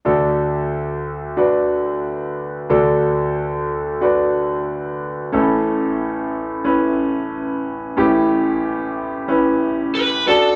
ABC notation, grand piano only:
X:1
M:4/4
L:1/8
Q:1/4=91
K:D
V:1 name="Grand piano"
[DFA]4 [DFB]4 | [DFA]4 [DFB]4 | [CEA]4 [CEB]4 | [CEG]4 [CEB]3 [DFA] |]
V:2 name="Grand piano" clef=bass
[D,,D,]8 | [D,,D,]8 | [A,,,A,,]8 | [A,,,A,,]6- [A,,,A,,] z |]